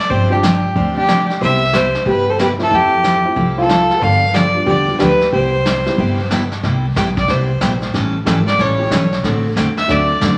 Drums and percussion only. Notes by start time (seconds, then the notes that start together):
0.10 brush sweep, kick
0.43 snare, hi-hat pedal
0.76 brush sweep, kick
1.08 snare, hi-hat pedal
1.30 snare
1.41 brush sweep, kick
1.73 snare, hi-hat pedal
1.95 snare
2.06 brush sweep, kick
2.39 snare, hi-hat pedal
2.59 snare
2.71 brush sweep, kick
3.04 snare, hi-hat pedal
3.36 brush sweep, kick
3.69 snare, hi-hat pedal
3.90 snare
4.01 brush sweep, kick
4.34 snare, hi-hat pedal
4.66 brush sweep, kick
5.00 snare, hi-hat pedal
5.21 snare
5.32 brush sweep, kick
5.65 snare, hi-hat pedal
5.86 snare
5.98 brush sweep, kick
6.30 snare, hi-hat pedal
6.51 snare
6.63 brush sweep, kick, snare
6.96 kick, snare, hi-hat pedal
7.17 kick, snare
7.28 brush sweep, kick, snare
7.61 kick, snare, hi-hat pedal
7.81 snare
7.94 brush sweep, kick, snare
8.26 kick, snare, hi-hat pedal
8.47 snare
8.59 brush sweep, kick, snare
8.91 kick, snare, hi-hat pedal
9.12 snare
9.23 brush sweep, kick, snare
9.56 kick, snare, hi-hat pedal
9.77 snare
9.89 brush sweep, kick, snare
10.21 kick, snare, hi-hat pedal